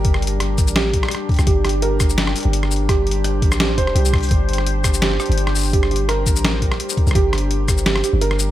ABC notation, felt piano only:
X:1
M:4/4
L:1/8
Q:"Swing 16ths" 1/4=169
K:Gm
V:1 name="Felt piano"
B2 z2 G4 | G G B4 z2 | G4 G c G z | z4 G4 |
G G B4 z2 | G4 G G B2 |]